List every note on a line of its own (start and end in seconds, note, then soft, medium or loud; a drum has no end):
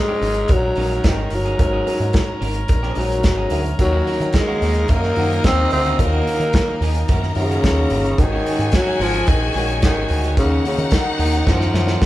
0.00 0.19 G#3 medium
0.00 0.54 G#3 loud
0.00 3.75 G#3 medium
0.00 5.94 C#4 medium
0.00 0.19 D#4 medium
0.00 0.19 F#4 medium
0.00 0.19 A#4 medium
0.00 8.14 A#4 medium
0.00 0.23 C#5 medium
0.08 0.21 F#3 medium
0.08 0.22 C#4 medium
0.08 0.22 D#4 medium
0.08 0.23 G#4 medium
0.21 0.43 G#1 loud
0.21 0.38 F#3 medium
0.21 0.36 C#4 medium
0.21 0.35 D#4 medium
0.21 0.35 G#4 medium
0.21 open hi-hat medium
0.34 muted clean electric guitar stroke soft
0.34 closed hi-hat medium
0.48 0.71 A#1 medium
0.48 kick loud
0.48 closed hi-hat medium
0.48 cowbell medium
0.52 1.09 F#3 loud
0.64 muted clean electric guitar stroke medium
0.75 0.98 A#1 medium
0.75 0.97 F#3 medium
0.75 1.36 G#3 medium
0.75 0.91 C#4 medium
0.75 1.37 D#4 medium
0.75 0.91 D#4 medium
0.75 1.37 F#4 medium
0.75 0.90 G#4 medium
0.75 1.37 A#4 medium
0.75 1.37 C#5 medium
0.75 open hi-hat medium
0.91 muted clean electric guitar stroke medium
0.91 closed hi-hat soft
1.04 1.26 G#1 loud
1.04 1.36 D#3 medium
1.04 1.24 F#3 loud
1.04 1.19 C#4 loud
1.04 1.18 D#4 loud
1.04 1.17 G#4 loud
1.04 kick loud
1.04 snare loud
1.04 closed hi-hat medium
1.04 cowbell medium
1.19 muted clean electric guitar stroke soft
1.30 1.53 G1 medium
1.30 muted clean electric guitar stroke soft
1.30 open hi-hat medium
1.35 2.71 F#3 loud
1.45 1.58 F#3 medium
1.45 1.59 C#4 medium
1.45 1.59 D#4 medium
1.45 1.60 G#4 medium
1.45 closed hi-hat soft
1.58 1.81 G#1 loud
1.58 2.38 G#3 medium
1.58 2.38 D#4 medium
1.58 2.39 F#4 medium
1.58 2.39 A#4 medium
1.58 1.66 C5 medium
1.58 muted clean electric guitar stroke soft
1.58 kick loud
1.58 closed hi-hat medium
1.58 cowbell medium
1.66 2.42 C#5 medium
1.73 1.85 F#3 medium
1.73 1.86 C#4 medium
1.73 1.87 D#4 medium
1.73 1.87 G#4 medium
1.86 2.02 F#3 medium
1.86 2.01 C#4 medium
1.86 2.00 D#4 medium
1.86 1.99 G#4 medium
1.86 open hi-hat medium
1.86 cowbell medium
2.00 2.11 G#2 medium
2.00 muted clean electric guitar stroke soft
2.00 closed hi-hat soft
2.13 muted clean electric guitar stroke soft
2.13 kick loud
2.13 snare loud
2.13 closed hi-hat medium
2.13 cowbell medium
2.27 muted clean electric guitar stroke soft
2.41 2.63 G#1 medium
2.41 2.61 F#3 medium
2.41 2.55 C#4 medium
2.41 2.55 D#4 medium
2.41 2.55 A#4 medium
2.41 open hi-hat medium
2.54 muted clean electric guitar stroke soft
2.54 closed hi-hat soft
2.68 2.91 A#1 medium
2.68 muted clean electric guitar stroke soft
2.68 kick loud
2.68 closed hi-hat medium
2.68 cowbell medium
2.83 2.95 F#3 medium
2.83 2.96 C#4 medium
2.83 2.97 D#4 medium
2.83 2.97 G#4 loud
2.83 snare soft
2.95 3.24 A#1 medium
2.95 3.12 F#3 medium
2.95 3.76 F#3 medium
2.95 3.56 G#3 medium
2.95 3.10 C#4 medium
2.95 3.56 D#4 medium
2.95 3.10 D#4 medium
2.95 3.56 F#4 medium
2.95 3.09 G#4 medium
2.95 3.57 A#4 medium
2.95 3.04 C5 medium
2.95 open hi-hat medium
3.04 3.60 C#5 medium
3.10 muted clean electric guitar stroke medium
3.10 closed hi-hat soft
3.23 3.46 G#1 loud
3.23 muted clean electric guitar stroke soft
3.23 kick loud
3.23 snare loud
3.23 closed hi-hat medium
3.23 cowbell medium
3.38 3.49 F#3 soft
3.38 3.50 C#4 medium
3.38 3.51 D#4 medium
3.38 3.51 G#4 medium
3.50 3.73 D2 medium
3.50 3.71 F#3 medium
3.50 3.65 C#4 medium
3.50 3.65 D#4 medium
3.50 3.64 G#4 medium
3.50 open hi-hat medium
3.50 cowbell medium
3.65 muted clean electric guitar stroke soft
3.65 closed hi-hat soft
3.79 4.00 D#2 loud
3.79 4.58 D#3 medium
3.79 8.15 D#3 medium
3.79 4.37 F#3 loud
3.79 8.14 A#3 medium
3.79 4.58 D#4 medium
3.79 7.04 D#4 medium
3.79 4.59 F4 medium
3.79 4.59 F#4 medium
3.79 4.59 C#5 medium
3.79 7.04 D#5 loud
3.79 muted clean electric guitar stroke soft
3.79 kick loud
3.79 closed hi-hat medium
3.79 cowbell medium
3.92 4.05 D#3 medium
3.92 4.06 A#3 medium
3.92 4.07 C#4 medium
3.92 4.07 F#4 medium
4.06 4.22 D#3 medium
4.06 4.20 A#3 medium
4.06 4.20 C#4 medium
4.06 4.19 F#4 medium
4.06 open hi-hat medium
4.20 4.31 D#3 loud
4.20 muted clean electric guitar stroke soft
4.20 closed hi-hat soft
4.33 4.92 G#3 loud
4.33 muted clean electric guitar stroke soft
4.33 kick loud
4.33 snare loud
4.33 closed hi-hat medium
4.33 cowbell loud
4.48 4.61 D#3 medium
4.48 4.62 A#3 medium
4.48 4.62 C#4 medium
4.48 4.63 F#4 medium
4.62 4.83 D#2 loud
4.62 4.77 D#3 medium
4.62 4.76 A#3 medium
4.62 4.76 C#4 medium
4.62 4.75 F#4 medium
4.62 open hi-hat medium
4.74 muted clean electric guitar stroke soft
4.74 closed hi-hat medium
4.88 5.11 F#2 medium
4.88 5.47 A#3 loud
4.88 kick loud
4.88 closed hi-hat medium
4.88 cowbell medium
5.03 muted clean electric guitar stroke medium
5.03 snare soft
5.16 5.38 F#2 loud
5.16 5.75 D#3 medium
5.16 5.36 D#3 medium
5.16 5.31 A#3 medium
5.16 5.30 C#4 loud
5.16 5.76 D#4 medium
5.16 5.76 F4 medium
5.16 5.76 F#4 medium
5.16 5.29 F#4 loud
5.16 5.76 C5 medium
5.16 open hi-hat medium
5.31 muted clean electric guitar stroke soft
5.31 closed hi-hat soft
5.44 5.66 D#2 loud
5.44 5.64 D#3 loud
5.44 5.58 A#3 loud
5.44 5.72 C4 loud
5.44 5.58 C#4 loud
5.44 5.57 F#4 loud
5.44 kick loud
5.44 snare loud
5.44 closed hi-hat medium
5.44 cowbell medium
5.58 muted clean electric guitar stroke soft
5.71 5.93 D2 loud
5.71 6.02 C4 loud
5.71 muted clean electric guitar stroke soft
5.71 open hi-hat medium
5.86 5.99 D#3 medium
5.86 6.00 A#3 medium
5.86 6.00 C#4 medium
5.86 6.00 F#4 medium
5.86 closed hi-hat soft
5.98 6.20 D#2 loud
5.98 6.78 D#3 medium
5.98 7.09 A#3 loud
5.98 6.78 D#4 medium
5.98 8.16 D#4 medium
5.98 6.78 F4 medium
5.98 6.78 F#4 medium
5.98 6.79 C#5 medium
5.98 muted clean electric guitar stroke soft
5.98 kick loud
5.98 closed hi-hat medium
5.98 cowbell medium
6.13 6.26 D#3 medium
6.13 6.26 A#3 medium
6.13 6.27 C#4 medium
6.13 6.28 F#4 medium
6.27 6.42 D#3 medium
6.27 6.41 A#3 medium
6.27 6.40 C#4 medium
6.27 6.39 F#4 medium
6.27 open hi-hat medium
6.40 6.50 D#3 medium
6.40 muted clean electric guitar stroke soft
6.40 closed hi-hat medium
6.53 muted clean electric guitar stroke soft
6.53 kick loud
6.53 snare loud
6.53 closed hi-hat medium
6.53 cowbell medium
6.69 muted clean electric guitar stroke soft
6.81 7.02 D#2 loud
6.81 7.01 D#3 medium
6.81 6.97 A#3 medium
6.81 6.96 C#4 medium
6.81 6.96 G#4 loud
6.81 open hi-hat medium
6.94 muted clean electric guitar stroke medium
6.94 closed hi-hat medium
7.08 7.30 F#2 medium
7.08 7.29 D#3 medium
7.08 7.23 A#3 medium
7.08 7.23 C#4 loud
7.08 7.22 F#4 loud
7.08 8.16 A#4 medium
7.08 8.16 A#5 medium
7.08 kick loud
7.08 closed hi-hat medium
7.08 cowbell medium
7.23 muted clean electric guitar stroke medium
7.23 snare soft
7.35 7.57 F#2 loud
7.35 8.21 C#3 loud
7.35 7.95 D#3 medium
7.35 7.95 D#4 medium
7.35 7.96 F4 medium
7.35 7.96 F#4 medium
7.35 7.96 C#5 medium
7.35 muted clean electric guitar stroke soft
7.35 open hi-hat medium
7.51 7.63 D#3 medium
7.51 7.63 A#3 medium
7.51 7.64 C#4 medium
7.51 7.64 F#4 medium
7.51 closed hi-hat soft
7.63 7.85 D#2 loud
7.63 muted clean electric guitar stroke soft
7.63 kick loud
7.63 snare loud
7.63 closed hi-hat medium
7.63 cowbell medium
7.78 7.90 D#3 soft
7.78 7.91 A#3 medium
7.78 7.91 C#4 medium
7.78 7.92 F#4 medium
7.90 8.12 G1 loud
7.90 8.11 D#3 medium
7.90 8.06 A#3 medium
7.90 8.05 C#4 medium
7.90 8.04 F#4 medium
7.90 open hi-hat medium
8.05 muted clean electric guitar stroke medium
8.05 closed hi-hat soft
8.18 8.40 G#1 loud
8.18 8.76 D#3 loud
8.18 8.97 G#3 medium
8.18 10.35 G#3 medium
8.18 12.06 C#4 medium
8.18 8.97 D#4 medium
8.18 8.97 F#4 medium
8.18 10.35 F#4 medium
8.18 10.33 G#4 loud
8.18 8.98 A#4 medium
8.18 8.25 C5 medium
8.18 10.33 G#5 loud
8.18 muted clean electric guitar stroke soft
8.18 kick loud
8.18 closed hi-hat medium
8.18 cowbell medium
8.26 9.01 C#5 medium
8.32 8.45 D#3 medium
8.32 8.46 G#3 medium
8.32 8.47 C#4 medium
8.32 8.47 F#4 medium
8.46 8.61 D#3 medium
8.46 8.60 G#3 medium
8.46 8.60 C#4 medium
8.46 8.58 F#4 medium
8.46 open hi-hat medium
8.59 8.70 G#2 medium
8.59 muted clean electric guitar stroke soft
8.59 closed hi-hat soft
8.71 9.03 F#3 loud
8.71 muted clean electric guitar stroke soft
8.71 kick loud
8.71 snare loud
8.71 closed hi-hat medium
8.71 cowbell medium
8.86 8.99 D#3 medium
8.86 9.00 G#3 medium
8.86 9.01 C#4 medium
8.86 9.01 F#4 medium
9.00 9.21 G#1 medium
9.00 9.16 D#3 medium
9.00 9.30 F3 loud
9.00 9.14 G#3 medium
9.00 9.14 C#4 medium
9.00 9.13 F#4 medium
9.00 open hi-hat medium
9.14 muted clean electric guitar stroke soft
9.14 closed hi-hat soft
9.27 9.49 A#1 medium
9.27 9.83 D#3 loud
9.27 kick loud
9.27 closed hi-hat medium
9.27 cowbell medium
9.42 muted clean electric guitar stroke medium
9.54 9.83 A#1 medium
9.54 9.75 D#3 medium
9.54 10.15 G#3 medium
9.54 9.69 G#3 medium
9.54 9.69 C#4 medium
9.54 10.15 D#4 medium
9.54 10.15 F#4 medium
9.54 9.68 F#4 medium
9.54 10.15 A#4 medium
9.54 10.15 C#5 medium
9.54 open hi-hat medium
9.69 muted clean electric guitar stroke soft
9.69 closed hi-hat soft
9.82 10.04 G#1 loud
9.82 10.02 D#3 loud
9.82 10.34 D#3 loud
9.82 9.97 G#3 loud
9.82 9.96 C#4 loud
9.82 9.95 F#4 loud
9.82 kick loud
9.82 snare loud
9.82 closed hi-hat medium
9.82 cowbell medium
9.97 muted clean electric guitar stroke medium
10.08 10.37 D2 loud
10.08 muted clean electric guitar stroke soft
10.08 open hi-hat medium
10.24 10.36 D#3 medium
10.24 10.37 G#3 medium
10.24 10.37 C#4 medium
10.24 10.37 F#4 medium
10.24 closed hi-hat soft
10.37 10.59 D#2 loud
10.37 10.63 C#3 loud
10.37 11.16 D#3 medium
10.37 12.06 D#3 medium
10.37 12.06 A#3 medium
10.37 11.17 C#4 medium
10.37 11.98 D#4 medium
10.37 11.17 D#4 medium
10.37 12.06 D#4 loud
10.37 11.17 F#4 medium
10.37 10.45 C5 medium
10.37 11.98 F#5 loud
10.37 muted clean electric guitar stroke soft
10.37 kick loud
10.37 closed hi-hat medium
10.37 cowbell medium
10.45 11.21 C#5 medium
10.51 10.63 D#3 medium
10.51 10.64 A#3 medium
10.51 10.64 C#4 medium
10.51 10.65 F#4 medium
10.65 10.95 C#3 loud
10.65 10.80 D#3 medium
10.65 10.78 A#3 medium
10.65 10.78 C#4 medium
10.65 10.77 F#4 medium
10.65 open hi-hat medium
10.78 10.89 D#3 loud
10.78 muted clean electric guitar stroke soft
10.78 closed hi-hat medium
10.90 11.51 D#3 loud
10.90 muted clean electric guitar stroke soft
10.90 kick loud
10.90 snare loud
10.90 closed hi-hat medium
10.90 cowbell medium
11.05 muted clean electric guitar stroke soft
11.18 11.41 D#2 medium
11.18 11.39 D#3 medium
11.18 11.33 A#3 medium
11.18 11.32 C#4 loud
11.18 11.32 G#4 medium
11.18 open hi-hat loud
11.32 muted clean electric guitar stroke soft
11.32 closed hi-hat medium
11.46 11.68 F#2 medium
11.46 11.66 D#3 medium
11.46 12.06 F3 loud
11.46 11.60 A#3 medium
11.46 11.60 C#4 loud
11.46 11.59 F#4 loud
11.46 kick loud
11.46 snare medium
11.46 cowbell medium
11.60 muted clean electric guitar stroke soft
11.60 snare medium
11.73 11.95 F#2 medium
11.73 12.06 D#3 medium
11.73 12.06 C#4 medium
11.73 12.06 D#4 medium
11.73 12.06 A#4 medium
11.73 12.06 C#5 medium
11.73 muted clean electric guitar stroke soft
11.73 snare medium
11.87 11.99 D#3 soft
11.87 12.00 A#3 soft
11.87 12.01 C#4 medium
11.87 12.01 F#4 medium
11.87 snare medium
12.01 12.06 D#2 loud
12.01 12.06 F#4 medium
12.01 12.06 F#5 medium
12.01 muted clean electric guitar stroke soft
12.01 kick loud
12.01 snare loud
12.01 cowbell medium